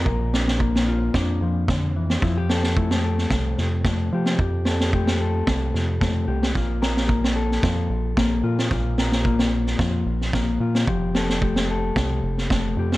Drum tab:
SD |--oo-o--o---o--o|o-oo-o-oo-o-o--o|--oo-o--o-o-o--o|o-oo-o-oo---o--o|
BD |o---o---o---o---|o---o---o---o---|o---o---o---o---|o---o---o---o---|

SD |o-oo-o-oo--oo--o|--oo-o--o--oo--o|
BD |o---o---o---o---|o---o---o---o---|